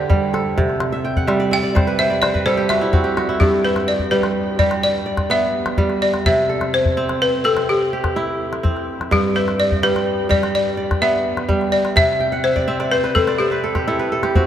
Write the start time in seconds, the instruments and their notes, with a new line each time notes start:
Already playing: kora D3 G4 B4 D5, balafon D5
0.10 kora G3, calabash thump
0.34 kora A4, calabash click
0.57 kora C3, calabash thump, calabash click
0.70 calabash click
0.80 calabash click
0.92 kora E5
1.04 kora G5, calabash click
1.17 kora F#5, calabash thump
1.27 kora G3 E5, calabash click
1.40 kora D5
1.51 kora E5, balafon G5, calabash click
1.63 kora D5
1.75 kora G3 C5, calabash thump, calabash click
1.87 kora B4, calabash click
1.99 kora C5, balafon E5, calabash click
2.10 kora D5
2.22 kora C5, balafon D5, calabash click
2.34 kora B4, calabash thump
2.46 kora G3 A4, balafon C5
2.57 kora G4
2.69 kora F#4, balafon E5, calabash click
2.81 kora E4
2.93 kora C4 F#4, calabash thump
3.04 kora G4, calabash click
3.17 kora F#4, calabash click
3.29 kora E4
3.40 kora G2, balafon G4, calabash thump
3.65 balafon B4, kora E5
3.76 calabash click
3.88 balafon D5
3.99 calabash thump
4.11 kora G3, balafon B4
4.23 calabash click
4.59 kora G3 G4, balafon D5, calabash thump
4.71 calabash click
4.83 balafon D5
5.06 kora D5
5.17 calabash thump, calabash click
5.30 kora B3, balafon E5, calabash click
5.66 calabash click
5.78 kora G3, calabash thump
5.90 calabash click
6.02 balafon D5
6.14 calabash click
6.26 kora C3, balafon E5, calabash thump
6.49 kora A4
6.61 calabash click
6.74 balafon C5
6.85 calabash thump
6.97 kora C4
7.09 calabash click
7.22 balafon B4
7.44 kora C4, balafon A4
7.57 calabash click
7.69 balafon G4
7.93 kora G4
8.04 calabash thump, calabash click
8.16 kora E4, calabash click
8.53 calabash click
8.63 kora C4, calabash thump
8.77 calabash click
9.01 calabash click
9.11 kora G2, balafon G4, calabash thump
9.35 balafon B4, kora E5
9.48 calabash click
9.60 balafon D5
9.72 calabash thump
9.83 kora G3, balafon B4
9.96 calabash click
10.29 kora G3 G4, balafon D5, calabash thump
10.43 calabash click
10.55 balafon D5
10.77 kora D5
10.91 calabash thump, calabash click
11.02 kora B3, balafon E5, calabash click
11.37 calabash click
11.49 kora G3, calabash thump
11.61 calabash click
11.72 balafon D5
11.85 calabash click
11.96 kora C3, balafon E5, calabash thump, calabash click
12.20 kora G5
12.32 kora F#5
12.44 balafon C5, kora E5
12.56 kora D5, calabash thump
12.68 kora C4 E5
12.80 kora D5, calabash click
12.91 balafon B4, kora C5
13.04 kora B4, calabash click
13.15 kora C4 C5, balafon A4, calabash thump, calabash click
13.28 kora D5, calabash click
13.38 balafon G4, kora C5, calabash click
13.51 kora B4, calabash click
13.64 kora A4
13.75 kora G4, calabash thump, calabash click
13.87 kora E4 A4
13.99 kora B4, calabash click
14.12 kora A4
14.23 kora G4, calabash click
14.35 kora C4 F#4, calabash thump